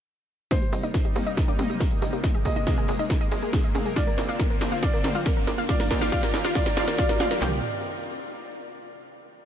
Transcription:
0.51 analog synth pad C3 G3 A#3 D#4, synth arpeggio sound A#3, synth pluck D#4 D#5, grand piano C5, kick, snare, closed hi-hat, mid tom, tambourine, riser
0.62 synth pluck G4, closed hi-hat, tambourine
0.73 analog synth bass C2, synth pluck G4, synth arpeggio sound D#5, open hi-hat, tambourine
0.83 synth arpeggio sound A#3, synth pluck D#4 D#5, closed hi-hat, tambourine
0.94 synth pluck G4, kick, snare, closed hi-hat, tambourine
1.05 synth pluck G4, synth arpeggio sound D#5, closed hi-hat, tambourine
1.16 analog synth bass C2, synth arpeggio sound A#3, synth pluck G4, open hi-hat, tambourine
1.26 synth pluck D#4 D#5, closed hi-hat, tambourine
1.37 synth pluck G4, synth arpeggio sound D#5, kick, snare, closed hi-hat, tambourine
1.48 synth arpeggio sound A#3, synth pluck D4 D5, closed hi-hat, tambourine
1.59 analog synth bass C2, synth pluck G4, open hi-hat, mid tom, tambourine
1.70 synth pluck G4, synth arpeggio sound D#5, closed hi-hat, tambourine
1.81 synth arpeggio sound A#3, synth pluck G4, kick, snare, closed hi-hat, tambourine
1.91 closed hi-hat, tambourine
2.02 analog synth bass A#1, synth pluck G4, synth arpeggio sound D#5, open hi-hat, tambourine
2.13 synth arpeggio sound A#3, synth pluck G4, closed hi-hat, tambourine
2.24 analog synth pad G#3 A#3, synth pluck D#4 D#5, kick, snare, closed hi-hat, mid tom, tambourine
2.34 synth pluck G#4, synth arpeggio sound D#5, closed hi-hat, tambourine
2.45 analog synth bass G#1, synth arpeggio sound A#3, synth pluck G#4, grand piano D#5, kick, open hi-hat, tambourine
2.56 synth pluck D#4 D#5, closed hi-hat, tambourine
2.67 synth pluck G#4, synth arpeggio sound D#5, kick, snare, closed hi-hat, tambourine
2.78 synth arpeggio sound A#3, synth pluck G#4, closed hi-hat, tambourine
2.88 analog synth bass G#1, synth pluck G#4, open hi-hat, tambourine
2.99 synth pluck D#4 D#5, synth arpeggio sound D#5, closed hi-hat, tambourine
3.10 synth arpeggio sound A#3, synth pluck G#4, kick, snare, closed hi-hat, tambourine
3.21 synth pluck D#4 D#5, closed hi-hat, tambourine
3.32 analog synth bass G#1, synth pluck G#4, synth arpeggio sound D#5, open hi-hat, tambourine
3.42 synth arpeggio sound A#3, synth pluck G#4, closed hi-hat, tambourine
3.53 synth pluck G#4, kick, snare, closed hi-hat, tambourine
3.64 synth arpeggio sound D#5, closed hi-hat, tambourine
3.75 analog synth bass D#1, synth arpeggio sound A#3, synth pluck G#4, open hi-hat, mid tom, tambourine
3.86 synth pluck G#4, closed hi-hat, tambourine
3.96 analog synth pad D3 C4, synth pluck F4 F5, synth arpeggio sound D5, grand piano D5, kick, snare, closed hi-hat, mid tom, tambourine
4.07 synth arpeggio sound A#3, synth pluck A#4, closed hi-hat, tambourine
4.18 analog synth bass A#1, synth pluck A#4, snare, open hi-hat, tambourine
4.29 synth pluck F4 F5, synth arpeggio sound D5, closed hi-hat, tambourine
4.40 synth arpeggio sound A#3, synth pluck A#4, kick, snare, closed hi-hat, tambourine
4.50 synth pluck A#4, closed hi-hat, tambourine
4.61 analog synth bass A#1, synth pluck A#4, synth arpeggio sound D5, snare, open hi-hat, tambourine
4.72 synth arpeggio sound A#3, synth pluck F4 F5, closed hi-hat, tambourine
4.83 synth pluck F4 F5, synth arpeggio sound D5, grand piano D5, kick, snare, closed hi-hat, tambourine
4.93 synth arpeggio sound A#3, synth pluck A#4, closed hi-hat, tambourine
5.04 analog synth bass A#1, synth pluck A#4, snare, open hi-hat, mid tom, tambourine
5.15 synth pluck F4 F5, synth arpeggio sound D5, closed hi-hat, tambourine
5.26 synth arpeggio sound A#3, synth pluck A#4, kick, snare, closed hi-hat, tambourine
5.37 synth pluck A#4, closed hi-hat, tambourine
5.47 analog synth bass G#1, synth pluck A#4, synth arpeggio sound D5, snare, open hi-hat, tambourine
5.58 synth arpeggio sound A#3, synth pluck F4 F5, closed hi-hat, tambourine
5.69 analog synth pad D#3 A#3 F4 G4, synth pluck F4 F5, synth arpeggio sound D5, grand piano D5, kick, snare, closed hi-hat, mid tom, tambourine
5.80 synth arpeggio sound A#3, synth pluck A#4, snare, closed hi-hat, tambourine
5.91 analog synth bass D#2, synth pluck A#4, kick, snare, open hi-hat, tambourine
6.01 synth pluck F4 F5, synth arpeggio sound D5, snare, tambourine
6.12 synth pluck F4 F5, synth arpeggio sound D5, grand piano D5, kick, snare, closed hi-hat, tambourine
6.23 synth arpeggio sound A#3, synth pluck A#4, snare, closed hi-hat, tambourine
6.34 analog synth bass D#2, synth pluck A#4, snare, open hi-hat, tambourine
6.45 synth pluck F4 F5, synth arpeggio sound D5, snare, closed hi-hat, tambourine
6.55 synth pluck F4 F5, synth arpeggio sound D5, grand piano D5, kick, snare, closed hi-hat, tambourine
6.66 synth arpeggio sound A#3, synth pluck A#4, snare, closed hi-hat, tambourine
6.77 analog synth bass D#2, synth pluck F4 F5, synth arpeggio sound D5, grand piano D5, snare, open hi-hat, tambourine
6.88 synth arpeggio sound A#3, synth pluck A#4, snare, closed hi-hat, tambourine
6.98 synth pluck F4 F5, synth arpeggio sound D5, grand piano D5, kick, snare, closed hi-hat, tambourine
7.09 synth arpeggio sound A#3, synth pluck A#4, snare, closed hi-hat
7.20 analog synth bass D#2, synth pluck F4 F5, synth arpeggio sound D5, grand piano D5, snare, open hi-hat, mid tom, tambourine
7.31 synth arpeggio sound A#3, synth pluck A#4, snare, tambourine
7.42 analog synth bass C2, analog synth pad C3 C4 D#4 A#4, synth arpeggio sound A#3, grand piano G4, synth pluck G5, snare, clap, floor tom

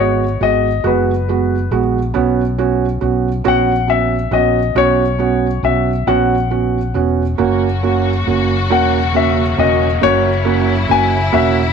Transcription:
Already playing: fretless electric bass G#1, felt piano G#3 B3 F#4
0.00 grand piano C#5
0.41 fretless electric bass G#1, felt piano G#3 B3 F#4, grand piano D#5
0.84 fretless electric bass F#1, felt piano G#3 B3 F#4, grand piano B4
1.28 felt piano G#3 B3 F#4
1.71 fretless electric bass A#1, felt piano G#3 B3 F#4
2.14 fretless electric bass B1, felt piano B3 C#4 F#4
2.58 felt piano B3 C#4 F#4
3.01 fretless electric bass B1, felt piano B3 C#4 F#4
3.44 fretless electric bass A#1, felt piano B3 C#4 F#4, grand piano F#5
3.87 felt piano B3 C#4 F#4, grand piano E5
4.31 fretless electric bass A#1, felt piano B3 C#4 F#4, grand piano D#5
4.75 fretless electric bass B1, felt piano B3 C#4 F#4, grand piano C#5
5.19 felt piano B3 C#4 F#4
5.63 fretless electric bass B1, felt piano B3 C#4 F#4, grand piano E5
6.07 fretless electric bass A#1, felt piano B3 C#4 F#4, grand piano F#5
6.50 felt piano B3 C#4 F#4
6.94 fretless electric bass E1, felt piano B3 C#4 F#4
7.38 fretless electric bass F#1, string section C#3 F#3 A#3 F#4, felt piano A#3 C#4 F#4
7.83 felt piano A#3 C#4 F#4
8.27 fretless electric bass F#1, felt piano A#3 C#4 F#4
8.70 fretless electric bass E1, felt piano A#3 C#4 F#4, grand piano F#5
9.14 felt piano A#3 C#4 F#4, grand piano E5
9.58 fretless electric bass E1, felt piano A#3 C#4 F#4, grand piano D#5
10.01 fretless electric bass F#1, felt piano A#3 C#4 F#4, string section E4, grand piano C#5
10.45 felt piano A#3 C#4 F#4
10.89 fretless electric bass F#1, felt piano A#3 C#4 F#4, grand piano G#5
11.32 fretless electric bass E1, felt piano A#3 C#4 F#4, grand piano E5

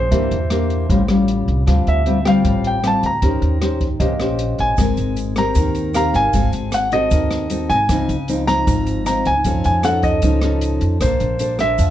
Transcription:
Already playing: upright bass A#1, nylon-string guitar C5, grand piano C5, tine electric piano G#5 C6 D#6
0.11 upright bass E2, nylon-string guitar E3 A#3 D4 G4, tine electric piano E5, kick, closed hi-hat
0.31 upright bass E2, closed hi-hat
0.50 nylon-string guitar A#3 D4 G4, cross-stick, closed hi-hat
0.70 closed hi-hat
0.89 upright bass A1, nylon-string guitar A2 G3 C#4 F4, kick, closed hi-hat
1.08 nylon-string guitar G3 C#4 F4, cross-stick, closed hi-hat
1.28 closed hi-hat
1.48 upright bass C2, closed hi-hat
1.66 upright bass D2, nylon-string guitar D3 G3 C4 F4, kick, cross-stick, closed hi-hat
1.87 upright bass D2, grand piano E5, closed hi-hat
2.06 nylon-string guitar G3 C4 F4, closed hi-hat
2.25 nylon-string guitar G3 C4 F4, grand piano F5, tine electric piano G5, cross-stick, closed hi-hat
2.44 upright bass A1, nylon-string guitar A2, kick, closed hi-hat
2.64 grand piano G5, closed hi-hat
2.83 nylon-string guitar G3 C4 F4, cross-stick, closed hi-hat
2.87 grand piano A5
3.03 upright bass D2, grand piano A#5, closed hi-hat
3.22 upright bass D#2, nylon-string guitar D#3 C#4 G4 C5, kick, closed hi-hat
3.42 upright bass D#2, closed hi-hat
3.61 nylon-string guitar C#4 G4 C5, cross-stick, closed hi-hat
3.81 kick, closed hi-hat
4.00 upright bass A#1, nylon-string guitar A#2 C#4 G4 C5, tine electric piano D#5, kick, closed hi-hat
4.20 nylon-string guitar C#4 G4 C5, cross-stick, closed hi-hat
4.39 closed hi-hat
4.59 upright bass A1, grand piano G#5, closed hi-hat
4.77 upright bass G#1, nylon-string guitar G#3 C4 A#4, kick, cross-stick, closed hi-hat, shaker
4.97 upright bass G#1, closed hi-hat, shaker
5.17 closed hi-hat, shaker
5.36 nylon-string guitar C4 G4 A#4, grand piano A#5, cross-stick, closed hi-hat, shaker
5.55 upright bass D#2, nylon-string guitar D#3, kick, closed hi-hat, shaker
5.75 closed hi-hat, shaker
5.94 nylon-string guitar C4 G4 A#4, tine electric piano F5, grand piano A#5, cross-stick, closed hi-hat, shaker
6.14 upright bass G#1, grand piano G#5, closed hi-hat, shaker
6.33 upright bass G#1, nylon-string guitar G#3 C4 F#4 A4, kick, closed hi-hat, shaker
6.53 upright bass G#1, closed hi-hat, shaker
6.72 grand piano F#5, cross-stick, closed hi-hat, shaker
6.92 nylon-string guitar C4 F#4 A4, grand piano D#5, closed hi-hat, shaker
7.11 upright bass D#2, nylon-string guitar D#3, kick, closed hi-hat, shaker
7.31 cross-stick, closed hi-hat, shaker
7.50 nylon-string guitar C4 F#4 A4, closed hi-hat, shaker
7.70 upright bass G#1, grand piano G#5, closed hi-hat, shaker
7.89 upright bass C#2, nylon-string guitar C#3 F3 C4 D#4, kick, cross-stick, closed hi-hat, shaker
8.09 upright bass C#2, closed hi-hat, shaker
8.28 nylon-string guitar F3 C4 D#4, closed hi-hat, shaker
8.47 nylon-string guitar F3 C4 D#4, grand piano A#5, cross-stick, closed hi-hat, shaker
8.67 upright bass G#1, nylon-string guitar G#2, kick, closed hi-hat, shaker
8.87 closed hi-hat, shaker
9.06 nylon-string guitar F3 C4 D#4, grand piano A#5, cross-stick, closed hi-hat, shaker
9.25 upright bass C#2, grand piano G#5, closed hi-hat, shaker
9.44 upright bass F2, nylon-string guitar F3 C#4 D#4 A4, kick, closed hi-hat, shaker
9.64 upright bass F2, grand piano G#5, closed hi-hat, shaker
9.83 nylon-string guitar C#4 D#4 A4, tine electric piano A4, grand piano F#5, cross-stick, closed hi-hat, shaker
10.03 grand piano D#5, kick, closed hi-hat, shaker
10.22 upright bass C#2, nylon-string guitar F3 C#4 D#4 A4, kick, closed hi-hat, shaker
10.41 nylon-string guitar C#4 D#4 A4, cross-stick, closed hi-hat, shaker
10.61 closed hi-hat, shaker
10.81 upright bass F2, closed hi-hat, shaker
11.01 upright bass A#1, nylon-string guitar A#3 D4 A4 C5, grand piano C5, kick, cross-stick, closed hi-hat, shaker
11.20 upright bass A#1, closed hi-hat, shaker
11.39 nylon-string guitar D4 A4 C5, closed hi-hat, shaker
11.59 nylon-string guitar D4 A4 C5, grand piano E5, cross-stick, closed hi-hat, shaker
11.78 upright bass F2, nylon-string guitar F3, kick, closed hi-hat, shaker

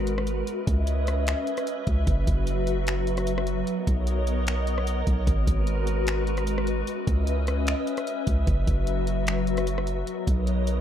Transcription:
Already playing: 808-style bass G#1, ambient pad G#3 F#4 A#4 B4
0.07 closed hi-hat
0.18 cross-stick
0.27 closed hi-hat
0.47 ambient pad C#4 B4 D#5 E5, closed hi-hat
0.67 808-style bass C#2, kick, closed hi-hat
0.87 closed hi-hat
1.07 cross-stick, closed hi-hat
1.27 finger snap, closed hi-hat
1.47 closed hi-hat
1.57 cross-stick, closed hi-hat
1.67 closed hi-hat
1.87 808-style bass C#2, kick, closed hi-hat
2.07 808-style bass F#1, ambient pad F#3 F#4, kick, closed hi-hat
2.27 808-style bass F#1, kick, closed hi-hat
2.47 closed hi-hat
2.67 closed hi-hat
2.87 finger snap, closed hi-hat
3.07 closed hi-hat
3.17 cross-stick, closed hi-hat
3.27 closed hi-hat
3.38 cross-stick
3.47 closed hi-hat
3.67 ambient pad B3 A#4 C#5 D#5, closed hi-hat
3.87 808-style bass B1, kick, closed hi-hat
4.07 closed hi-hat
4.27 closed hi-hat
4.47 finger snap, closed hi-hat
4.67 closed hi-hat
4.78 cross-stick
4.87 closed hi-hat
5.07 808-style bass B1, kick, closed hi-hat
5.27 808-style bass G#1, ambient pad G#3 F#4 A#4 B4, kick, closed hi-hat
5.47 808-style bass G#1, kick, closed hi-hat
5.67 closed hi-hat
5.87 closed hi-hat
6.07 finger snap, closed hi-hat
6.27 closed hi-hat
6.37 cross-stick, closed hi-hat
6.47 closed hi-hat
6.58 cross-stick
6.67 closed hi-hat
6.87 ambient pad C#4 B4 D#5 E5, closed hi-hat
7.07 808-style bass C#2, kick, closed hi-hat
7.27 closed hi-hat
7.47 cross-stick, closed hi-hat
7.67 finger snap, closed hi-hat
7.87 closed hi-hat
7.97 cross-stick, closed hi-hat
8.07 closed hi-hat
8.27 808-style bass C#2, kick, closed hi-hat
8.47 808-style bass F#1, ambient pad F#3 F#4, kick, closed hi-hat
8.67 808-style bass F#1, kick, closed hi-hat
8.87 closed hi-hat
9.07 closed hi-hat
9.27 finger snap, closed hi-hat
9.47 closed hi-hat
9.57 cross-stick, closed hi-hat
9.67 closed hi-hat
9.78 cross-stick
9.87 closed hi-hat
10.07 ambient pad B3 A#4 C#5 D#5, closed hi-hat
10.27 808-style bass B1, kick, closed hi-hat
10.47 closed hi-hat
10.67 closed hi-hat

